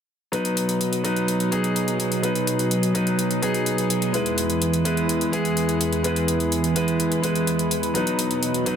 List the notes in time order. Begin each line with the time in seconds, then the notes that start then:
0.32 B2 F#3 B3 D#4 B4, closed hi-hat
0.45 closed hi-hat
0.57 closed hi-hat
0.69 closed hi-hat
0.81 closed hi-hat
0.93 closed hi-hat
1.04 F#3 B3 D#4 B4, closed hi-hat
1.16 closed hi-hat
1.28 closed hi-hat
1.40 closed hi-hat
1.51 F#3 B3 D#4 G#4, closed hi-hat
1.64 closed hi-hat
1.76 closed hi-hat
1.88 closed hi-hat
2.00 closed hi-hat
2.12 closed hi-hat
2.22 F#3 B3 D#4 B4, closed hi-hat
2.35 closed hi-hat
2.47 closed hi-hat
2.59 closed hi-hat
2.71 closed hi-hat
2.83 closed hi-hat
2.94 F#3 B3 D#4 B4, closed hi-hat
3.07 closed hi-hat
3.19 closed hi-hat
3.31 closed hi-hat
3.42 F#3 B3 D#4 G#4, closed hi-hat
3.54 closed hi-hat
3.66 closed hi-hat
3.78 closed hi-hat
3.90 closed hi-hat
4.02 closed hi-hat
4.13 E2 E3 G#3 B3 E4 G#4 B4, closed hi-hat
4.26 closed hi-hat
4.38 closed hi-hat
4.50 closed hi-hat
4.62 closed hi-hat
4.74 closed hi-hat
4.85 G#3 B3 E4 B4, closed hi-hat
4.97 closed hi-hat
5.09 closed hi-hat
5.21 closed hi-hat
5.32 G#3 B3 E4 G#4, closed hi-hat
5.45 closed hi-hat
5.57 closed hi-hat
5.69 closed hi-hat
5.81 closed hi-hat
5.93 closed hi-hat
6.03 G#3 B3 E4 B4, closed hi-hat
6.16 closed hi-hat
6.28 closed hi-hat
6.40 closed hi-hat
6.52 closed hi-hat
6.64 closed hi-hat
6.75 G#3 B3 E4 B4, closed hi-hat
6.88 closed hi-hat
7.00 closed hi-hat
7.12 closed hi-hat
7.22 G#3 B3 E4 B4, closed hi-hat
7.35 closed hi-hat
7.47 closed hi-hat
7.59 closed hi-hat
7.71 closed hi-hat
7.83 closed hi-hat
7.94 B2 F#3 B3 D#4 B4, closed hi-hat
8.07 closed hi-hat
8.19 closed hi-hat
8.31 closed hi-hat
8.43 closed hi-hat
8.54 closed hi-hat
8.66 F#3 B3 D#4 B4, closed hi-hat